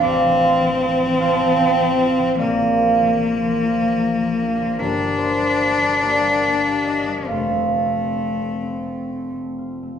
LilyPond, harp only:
<<
  \new Staff \with { instrumentName = "Harp" } { \time 6/8 \key f \mixolydian \tempo 4. = 49 << { d'''8 c'''4 a''8 g''4 | f''2. | bes'8 c''4 d''4 ees''8 | f''2. | } \\ { <f' a' f'' a''>8 <f'' a''>4 <c'' f''>4. | <bes' d''>2. | <d' g'>4. <g' bes'>4. | <a' c''>2. | } >> }
  \new Staff \with { instrumentName = "Harp" } { \time 6/8 \key f \mixolydian <a,, f a>16 f16 f'16 f16 c'16 f16 f'16 f16 c'16 f16 f'16 f16 | bes,,16 f16 f'16 f16 bes16 f16 f'16 f16 bes16 f16 d'16 f16 | g,,16 g16 bes16 g16 bes16 g16 bes16 g16 bes16 g16 d'16 g16 | f,,16 a16 c'16 a16 c'16 a16 c'16 a16 c'16 a16 f'16 a16 | }
>>